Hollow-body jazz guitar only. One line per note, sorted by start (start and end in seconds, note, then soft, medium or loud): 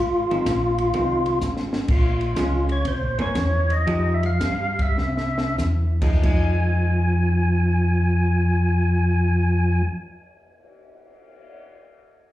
0.31 0.45 D#3 medium
0.31 0.45 G#3 medium
0.31 0.45 C4 medium
0.94 1.23 D#3 medium
0.94 1.23 G#3 medium
0.94 1.23 C4 medium
2.37 2.66 G#3 medium
2.37 2.66 C#4 medium
2.37 2.67 F4 medium
3.18 3.34 E3 medium
3.18 3.34 A#3 medium
3.18 3.34 C#4 medium
3.87 4.19 F3 medium
3.87 4.20 G#3 medium
3.87 4.20 D#4 medium
3.87 4.20 G4 medium
6.02 6.22 F3 medium
6.02 6.23 G#3 medium
6.02 6.24 D#4 medium
6.23 9.86 F3 medium
6.23 9.87 G#3 medium
6.23 9.88 D#4 medium